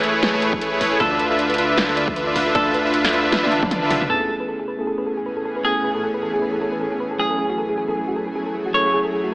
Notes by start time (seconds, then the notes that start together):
Already playing: A1
0.03 A3 E4 G#4 A4 B4 C#5, closed hi-hat
0.14 G#4
0.23 B4, snare, closed hi-hat
0.33 A3 E4 G#4 A4 B4 C#5
0.42 A4, closed hi-hat
0.53 B4, kick
0.61 A3 E4 G#4 A4 B4 C#5, closed hi-hat
0.72 G#4
0.81 B4, kick, open hi-hat
0.92 A4
1.00 D2 D3 D4 F4 A4 B4 E5, kick, closed hi-hat
1.11 D5
1.20 B4, closed hi-hat
1.30 D3 D4 F4 A4 B4 E5
1.39 D5, closed hi-hat
1.50 B4, closed hi-hat
1.54 closed hi-hat
1.58 D3 D4 F4 B4 E5, closed hi-hat
1.69 D5
1.78 B4, snare, closed hi-hat
1.88 D3 D4 F4 A4 B4 E5
1.97 D5, closed hi-hat
2.08 B4, kick
2.16 D3 D4 F4 B4 E5, closed hi-hat
2.27 D5
2.36 B4, kick, open hi-hat
2.46 A4
2.55 D2 D3 D4 F4 A4 B4 D5 E5, kick, closed hi-hat
2.66 B4
2.74 B4, closed hi-hat
2.85 D3 D4 F4 B4 D5 E5
2.94 B4, closed hi-hat
3.05 A4, snare, closed hi-hat
3.09 closed hi-hat
3.13 D3 D4 F4 B4 D5 E5, closed hi-hat
3.24 B4
3.32 A1 B4, snare, closed hi-hat, high tom
3.43 D3 D4 F4 B4 D5 E5, high tom
3.52 A5, closed hi-hat
3.63 D3 D4 D5 A5, kick, mid tom
3.71 A5, closed hi-hat, mid tom
3.82 D3 D4 F4 B4 E5 A5
3.90 B1 A5, mid tom, open hi-hat
4.01 B4, mid tom
4.08 A2 E3 A3 B3 C#4 E4 G#4 A4 B4, sub drop
4.12 G#4
4.21 A4
4.29 A4
4.40 B4
4.49 A4
4.59 G#4
4.68 B4
4.77 A3 B3 C#4 E4 A4
4.81 G#4
4.87 A4
4.98 B4
5.07 A4
5.17 G#4
5.26 B4
5.37 A4
5.45 A4
5.56 B4
5.63 A3 B3 C#4 E4 G#4 A4
5.76 G#4
5.84 B4
5.95 A4
6.03 A4
6.14 B4
6.23 A4
6.31 A3 B3 C#4 E4 G#4
6.42 B4
6.53 A4
6.61 A4
6.72 B4
6.81 A4
6.92 G#4
7.00 B4
7.11 A4
7.17 F#2 F#3 A3 C#4 E4 G#4
7.21 G#4
7.30 A4
7.39 G#4
7.50 F#4
7.58 A4
7.69 G#4
7.78 G#4
7.86 F#3 A3 C#4 E4 A4
7.90 G#4
7.97 G#4
8.08 F#4
8.16 A4
8.27 G#4
8.36 G#4
8.46 A4
8.55 G#4
8.66 F#4
8.72 F#3 A3 C#4 E4 A4 C#5
8.76 G#4
8.85 G#4
8.94 G#4
9.04 A4
9.13 G#4
9.24 F#4